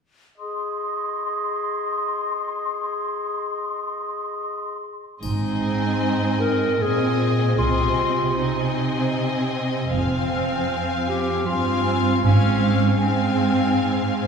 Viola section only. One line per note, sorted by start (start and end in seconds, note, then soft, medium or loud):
5.23 6.76 C4 soft
6.80 7.57 C4 soft
7.58 8.35 C4 soft
8.36 9.90 C4 soft
9.92 11.44 C4 soft
11.48 12.23 C4 soft
12.25 13.00 C4 soft
13.01 14.27 C4 soft